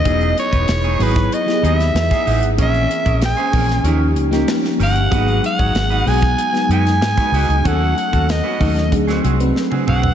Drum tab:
HH |xxxxxxoxxxxxxxox|xxxxxxoxx-xxx-ox|xxxxxxoxxxxxxxox|x-xxx-oxxxxx----|
SD |----o--o-o-ooo--|----o--o---ooo--|----o--o-o-ooo--|----o--o-o--o---|
T1 |----------------|----------------|----------------|-------------o--|
T2 |----------------|----------------|----------------|--------------o-|
FT |----------------|----------------|----------------|---------------o|
BD |o--o---o-----o--|o--o--o---------|o--o---o-----o--|o--o--o-o-------|